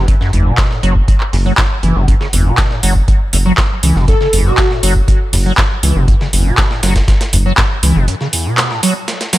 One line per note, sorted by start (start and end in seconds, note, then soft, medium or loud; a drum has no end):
0.00 0.15 F#1 loud
0.08 0.15 F#2 medium
0.08 kick loud
0.08 closed hi-hat medium
0.21 0.31 F#2 loud
0.21 snare soft
0.33 0.52 F#1 medium
0.33 0.47 E2 medium
0.33 closed hi-hat medium
0.46 0.72 B2 medium
0.58 kick loud
0.58 snare loud
0.58 clap loud
0.58 closed hi-hat medium
0.71 0.81 A2 medium
0.71 snare soft
0.83 1.02 F#1 medium
0.83 0.94 F#3 loud
0.83 closed hi-hat medium
0.96 kick medium
1.08 kick loud
1.08 closed hi-hat medium
1.20 clap soft
1.33 1.52 F#1 medium
1.33 1.37 E2 medium
1.33 open hi-hat medium
1.46 1.53 F#3 loud
1.58 1.62 A2 medium
1.58 kick loud
1.58 snare loud
1.58 clap loud
1.58 closed hi-hat medium
1.83 1.93 F#1 loud
1.83 1.97 E3 medium
1.83 closed hi-hat medium
1.96 2.15 F#1 loud
1.96 2.06 B2 medium
2.08 2.15 F#2 medium
2.08 kick loud
2.08 closed hi-hat medium
2.21 2.28 C#3 medium
2.21 snare medium
2.33 2.52 F#1 loud
2.33 2.47 E2 medium
2.33 closed hi-hat medium
2.33 open hi-hat loud
2.46 2.72 B2 medium
2.58 kick loud
2.58 snare loud
2.58 clap loud
2.58 closed hi-hat medium
2.71 2.81 A2 medium
2.71 snare soft
2.83 3.02 F#1 medium
2.83 2.94 F#3 loud
2.83 closed hi-hat medium
2.83 open hi-hat loud
2.96 kick medium
3.08 kick loud
3.08 closed hi-hat medium
3.33 3.52 F#1 medium
3.33 3.37 E2 medium
3.33 closed hi-hat medium
3.33 open hi-hat loud
3.46 3.53 F#3 loud
3.58 3.62 A2 medium
3.58 kick loud
3.58 snare loud
3.58 clap loud
3.58 closed hi-hat medium
3.83 3.93 C#2 loud
3.83 3.97 E3 medium
3.83 closed hi-hat medium
3.83 open hi-hat loud
3.96 4.15 F#1 loud
3.96 4.06 B2 medium
3.96 snare soft
4.08 4.15 F#2 medium
4.08 4.16 A4 medium
4.08 kick loud
4.08 closed hi-hat medium
4.21 4.28 C#3 medium
4.21 4.29 A4 medium
4.21 snare soft
4.33 4.52 F#1 medium
4.33 4.47 E2 medium
4.33 closed hi-hat medium
4.33 open hi-hat loud
4.46 4.72 B2 medium
4.46 4.54 F#4 medium
4.58 4.66 F#4 medium
4.58 kick loud
4.58 snare loud
4.58 clap loud
4.58 closed hi-hat medium
4.71 4.81 A2 medium
4.71 snare soft
4.83 5.02 F#1 medium
4.83 4.94 F#3 loud
4.83 closed hi-hat medium
4.83 open hi-hat loud
4.96 kick medium
5.08 kick loud
5.08 closed hi-hat medium
5.33 5.52 F#1 medium
5.33 5.37 E2 medium
5.33 open hi-hat loud
5.33 open hi-hat medium
5.46 5.53 F#3 loud
5.58 5.62 A2 medium
5.58 kick loud
5.58 snare loud
5.58 clap loud
5.58 closed hi-hat medium
5.83 5.93 C#2 loud
5.83 5.98 E3 medium
5.83 closed hi-hat medium
5.83 open hi-hat loud
5.96 6.15 F#1 loud
5.96 6.06 B2 medium
6.08 6.15 F#2 medium
6.08 kick loud
6.08 closed hi-hat medium
6.21 6.28 C#3 medium
6.21 snare medium
6.33 6.52 F#1 medium
6.33 6.47 E2 medium
6.33 closed hi-hat medium
6.33 open hi-hat medium
6.46 6.73 B2 medium
6.58 kick loud
6.58 snare loud
6.58 clap loud
6.58 closed hi-hat medium
6.71 6.81 A2 medium
6.71 snare medium
6.83 7.02 F#1 medium
6.83 6.94 F#3 loud
6.83 snare loud
6.83 closed hi-hat medium
6.83 open hi-hat loud
6.96 kick medium
6.96 snare loud
6.96 closed hi-hat medium
7.08 kick loud
7.08 snare medium
7.08 closed hi-hat medium
7.21 snare loud
7.21 closed hi-hat medium
7.33 7.52 F#1 medium
7.33 7.37 E2 medium
7.33 closed hi-hat medium
7.33 open hi-hat loud
7.46 7.53 F#3 loud
7.58 7.62 A2 medium
7.58 kick loud
7.58 snare loud
7.58 clap loud
7.58 closed hi-hat medium
7.83 7.93 C#2 loud
7.83 7.97 E3 medium
7.83 closed hi-hat medium
7.83 open hi-hat loud
7.96 8.08 F#1 loud
7.96 8.06 B2 medium
8.08 8.15 F#2 medium
8.08 closed hi-hat medium
8.21 8.28 C#3 medium
8.21 snare soft
8.33 8.47 E2 medium
8.33 closed hi-hat medium
8.33 open hi-hat loud
8.46 8.72 B2 medium
8.58 snare loud
8.58 clap loud
8.58 closed hi-hat medium
8.71 8.81 A2 medium
8.71 snare soft
8.83 8.94 F#3 loud
8.83 closed hi-hat medium
8.83 open hi-hat loud
9.08 snare loud
9.08 closed hi-hat medium
9.21 snare medium
9.21 closed hi-hat medium
9.33 9.38 F#3 medium
9.33 snare loud
9.33 closed hi-hat medium
9.33 open hi-hat loud